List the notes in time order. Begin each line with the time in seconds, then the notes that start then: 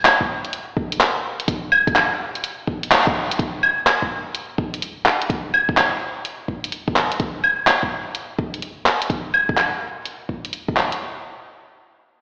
0.05 clap, closed hi-hat, claves
0.21 kick
0.45 closed hi-hat
0.53 closed hi-hat
0.77 kick
0.92 closed hi-hat
1.01 clap, closed hi-hat
1.40 closed hi-hat
1.48 kick, closed hi-hat
1.72 claves
1.88 kick, closed hi-hat
1.96 clap, closed hi-hat, claves
2.35 closed hi-hat
2.44 closed hi-hat
2.67 kick
2.83 closed hi-hat
2.91 clap, closed hi-hat
3.07 kick
3.31 closed hi-hat
3.39 kick, closed hi-hat
3.63 claves
3.87 clap, closed hi-hat, claves
4.02 kick
4.34 closed hi-hat
4.58 kick
4.74 closed hi-hat
4.82 closed hi-hat
5.06 clap
5.22 closed hi-hat
5.30 kick, closed hi-hat
5.54 claves
5.69 kick
5.77 clap, closed hi-hat, claves
6.25 closed hi-hat
6.48 kick
6.64 closed hi-hat
6.72 closed hi-hat
6.88 kick
6.96 clap
7.12 closed hi-hat
7.20 kick, closed hi-hat
7.44 claves
7.67 clap, closed hi-hat, claves
7.83 kick
8.15 closed hi-hat
8.39 kick
8.54 closed hi-hat
8.63 closed hi-hat
8.86 clap
9.02 closed hi-hat
9.10 kick, closed hi-hat
9.34 claves
9.49 kick
9.58 clap, closed hi-hat, claves
10.06 closed hi-hat
10.29 kick
10.45 closed hi-hat
10.53 closed hi-hat
10.68 kick
10.77 clap
10.92 closed hi-hat